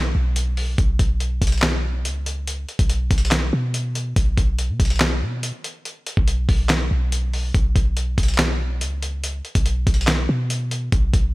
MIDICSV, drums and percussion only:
0, 0, Header, 1, 2, 480
1, 0, Start_track
1, 0, Tempo, 422535
1, 891, Time_signature, 4, 2, 24, 8
1, 12883, End_track
2, 0, Start_track
2, 0, Title_t, "Drums"
2, 409, Note_on_c, 9, 42, 89
2, 522, Note_off_c, 9, 42, 0
2, 650, Note_on_c, 9, 46, 59
2, 764, Note_off_c, 9, 46, 0
2, 889, Note_on_c, 9, 36, 119
2, 889, Note_on_c, 9, 42, 90
2, 1003, Note_off_c, 9, 36, 0
2, 1003, Note_off_c, 9, 42, 0
2, 1129, Note_on_c, 9, 36, 97
2, 1129, Note_on_c, 9, 42, 74
2, 1242, Note_off_c, 9, 42, 0
2, 1243, Note_off_c, 9, 36, 0
2, 1367, Note_on_c, 9, 42, 78
2, 1481, Note_off_c, 9, 42, 0
2, 1609, Note_on_c, 9, 36, 84
2, 1609, Note_on_c, 9, 42, 79
2, 1670, Note_off_c, 9, 42, 0
2, 1670, Note_on_c, 9, 42, 68
2, 1722, Note_off_c, 9, 36, 0
2, 1730, Note_off_c, 9, 42, 0
2, 1730, Note_on_c, 9, 42, 57
2, 1790, Note_off_c, 9, 42, 0
2, 1790, Note_on_c, 9, 42, 45
2, 1840, Note_on_c, 9, 39, 94
2, 1849, Note_on_c, 9, 38, 117
2, 1851, Note_off_c, 9, 42, 0
2, 1851, Note_on_c, 9, 42, 90
2, 1953, Note_off_c, 9, 39, 0
2, 1962, Note_off_c, 9, 38, 0
2, 1964, Note_off_c, 9, 42, 0
2, 2330, Note_on_c, 9, 42, 91
2, 2444, Note_off_c, 9, 42, 0
2, 2571, Note_on_c, 9, 42, 81
2, 2684, Note_off_c, 9, 42, 0
2, 2811, Note_on_c, 9, 42, 87
2, 2925, Note_off_c, 9, 42, 0
2, 3051, Note_on_c, 9, 42, 45
2, 3164, Note_off_c, 9, 42, 0
2, 3170, Note_on_c, 9, 42, 79
2, 3171, Note_on_c, 9, 36, 93
2, 3284, Note_off_c, 9, 36, 0
2, 3284, Note_off_c, 9, 42, 0
2, 3289, Note_on_c, 9, 42, 75
2, 3403, Note_off_c, 9, 42, 0
2, 3528, Note_on_c, 9, 46, 61
2, 3529, Note_on_c, 9, 36, 88
2, 3529, Note_on_c, 9, 42, 65
2, 3610, Note_off_c, 9, 42, 0
2, 3610, Note_on_c, 9, 42, 64
2, 3642, Note_off_c, 9, 46, 0
2, 3643, Note_off_c, 9, 36, 0
2, 3690, Note_off_c, 9, 42, 0
2, 3690, Note_on_c, 9, 42, 68
2, 3760, Note_on_c, 9, 39, 96
2, 3769, Note_on_c, 9, 38, 117
2, 3771, Note_off_c, 9, 42, 0
2, 3771, Note_on_c, 9, 42, 88
2, 3873, Note_off_c, 9, 39, 0
2, 3883, Note_off_c, 9, 38, 0
2, 3885, Note_off_c, 9, 42, 0
2, 4249, Note_on_c, 9, 42, 89
2, 4363, Note_off_c, 9, 42, 0
2, 4491, Note_on_c, 9, 42, 78
2, 4605, Note_off_c, 9, 42, 0
2, 4730, Note_on_c, 9, 36, 125
2, 4730, Note_on_c, 9, 42, 91
2, 4843, Note_off_c, 9, 42, 0
2, 4844, Note_off_c, 9, 36, 0
2, 4970, Note_on_c, 9, 36, 97
2, 4970, Note_on_c, 9, 42, 76
2, 5083, Note_off_c, 9, 36, 0
2, 5084, Note_off_c, 9, 42, 0
2, 5209, Note_on_c, 9, 42, 78
2, 5322, Note_off_c, 9, 42, 0
2, 5449, Note_on_c, 9, 36, 87
2, 5450, Note_on_c, 9, 42, 77
2, 5510, Note_off_c, 9, 42, 0
2, 5510, Note_on_c, 9, 42, 70
2, 5563, Note_off_c, 9, 36, 0
2, 5570, Note_off_c, 9, 42, 0
2, 5570, Note_on_c, 9, 42, 57
2, 5630, Note_off_c, 9, 42, 0
2, 5630, Note_on_c, 9, 42, 46
2, 5680, Note_on_c, 9, 39, 96
2, 5689, Note_on_c, 9, 38, 119
2, 5691, Note_off_c, 9, 42, 0
2, 5691, Note_on_c, 9, 42, 91
2, 5793, Note_off_c, 9, 39, 0
2, 5803, Note_off_c, 9, 38, 0
2, 5805, Note_off_c, 9, 42, 0
2, 6170, Note_on_c, 9, 42, 91
2, 6283, Note_off_c, 9, 42, 0
2, 6411, Note_on_c, 9, 42, 80
2, 6524, Note_off_c, 9, 42, 0
2, 6650, Note_on_c, 9, 42, 91
2, 6763, Note_off_c, 9, 42, 0
2, 6890, Note_on_c, 9, 42, 74
2, 7003, Note_off_c, 9, 42, 0
2, 7011, Note_on_c, 9, 36, 90
2, 7124, Note_off_c, 9, 36, 0
2, 7129, Note_on_c, 9, 42, 81
2, 7243, Note_off_c, 9, 42, 0
2, 7370, Note_on_c, 9, 36, 86
2, 7370, Note_on_c, 9, 46, 60
2, 7483, Note_off_c, 9, 36, 0
2, 7483, Note_off_c, 9, 46, 0
2, 7601, Note_on_c, 9, 39, 94
2, 7610, Note_on_c, 9, 38, 118
2, 7612, Note_on_c, 9, 42, 91
2, 7714, Note_off_c, 9, 39, 0
2, 7724, Note_off_c, 9, 38, 0
2, 7725, Note_off_c, 9, 42, 0
2, 8091, Note_on_c, 9, 42, 92
2, 8205, Note_off_c, 9, 42, 0
2, 8332, Note_on_c, 9, 46, 57
2, 8446, Note_off_c, 9, 46, 0
2, 8571, Note_on_c, 9, 36, 123
2, 8572, Note_on_c, 9, 42, 90
2, 8685, Note_off_c, 9, 36, 0
2, 8685, Note_off_c, 9, 42, 0
2, 8811, Note_on_c, 9, 36, 99
2, 8811, Note_on_c, 9, 42, 74
2, 8924, Note_off_c, 9, 42, 0
2, 8925, Note_off_c, 9, 36, 0
2, 9050, Note_on_c, 9, 42, 78
2, 9164, Note_off_c, 9, 42, 0
2, 9290, Note_on_c, 9, 36, 83
2, 9292, Note_on_c, 9, 42, 78
2, 9351, Note_off_c, 9, 42, 0
2, 9351, Note_on_c, 9, 42, 66
2, 9404, Note_off_c, 9, 36, 0
2, 9410, Note_off_c, 9, 42, 0
2, 9410, Note_on_c, 9, 42, 57
2, 9470, Note_off_c, 9, 42, 0
2, 9470, Note_on_c, 9, 42, 47
2, 9520, Note_on_c, 9, 39, 93
2, 9529, Note_on_c, 9, 38, 118
2, 9531, Note_off_c, 9, 42, 0
2, 9531, Note_on_c, 9, 42, 90
2, 9634, Note_off_c, 9, 39, 0
2, 9643, Note_off_c, 9, 38, 0
2, 9645, Note_off_c, 9, 42, 0
2, 10010, Note_on_c, 9, 42, 92
2, 10124, Note_off_c, 9, 42, 0
2, 10252, Note_on_c, 9, 42, 80
2, 10366, Note_off_c, 9, 42, 0
2, 10491, Note_on_c, 9, 42, 89
2, 10605, Note_off_c, 9, 42, 0
2, 10731, Note_on_c, 9, 42, 47
2, 10845, Note_off_c, 9, 42, 0
2, 10851, Note_on_c, 9, 36, 91
2, 10851, Note_on_c, 9, 42, 80
2, 10964, Note_off_c, 9, 42, 0
2, 10965, Note_off_c, 9, 36, 0
2, 10970, Note_on_c, 9, 42, 79
2, 11083, Note_off_c, 9, 42, 0
2, 11210, Note_on_c, 9, 36, 87
2, 11210, Note_on_c, 9, 46, 59
2, 11211, Note_on_c, 9, 42, 63
2, 11291, Note_off_c, 9, 42, 0
2, 11291, Note_on_c, 9, 42, 66
2, 11323, Note_off_c, 9, 46, 0
2, 11324, Note_off_c, 9, 36, 0
2, 11371, Note_off_c, 9, 42, 0
2, 11371, Note_on_c, 9, 42, 65
2, 11440, Note_on_c, 9, 39, 94
2, 11449, Note_on_c, 9, 38, 116
2, 11451, Note_off_c, 9, 42, 0
2, 11451, Note_on_c, 9, 42, 90
2, 11553, Note_off_c, 9, 39, 0
2, 11563, Note_off_c, 9, 38, 0
2, 11564, Note_off_c, 9, 42, 0
2, 11929, Note_on_c, 9, 42, 91
2, 12043, Note_off_c, 9, 42, 0
2, 12170, Note_on_c, 9, 42, 80
2, 12284, Note_off_c, 9, 42, 0
2, 12409, Note_on_c, 9, 42, 88
2, 12410, Note_on_c, 9, 36, 123
2, 12523, Note_off_c, 9, 36, 0
2, 12523, Note_off_c, 9, 42, 0
2, 12650, Note_on_c, 9, 36, 97
2, 12650, Note_on_c, 9, 42, 73
2, 12763, Note_off_c, 9, 36, 0
2, 12764, Note_off_c, 9, 42, 0
2, 12883, End_track
0, 0, End_of_file